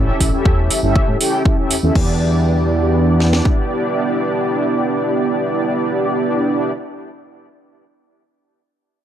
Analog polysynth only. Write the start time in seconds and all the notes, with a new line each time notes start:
Already playing: C#4 E4 G4 A4 E5
0.32 C#4 E4 G4 A4 E5
0.83 C#4 E4 G4 A4 E5
1.20 C#4 E4 G4 A4 G5
1.46 G4
1.58 C#4 E4 G4 A4 E5
1.83 C#4 E4 G4 A4 E5
1.94 B3 D4 G4 D5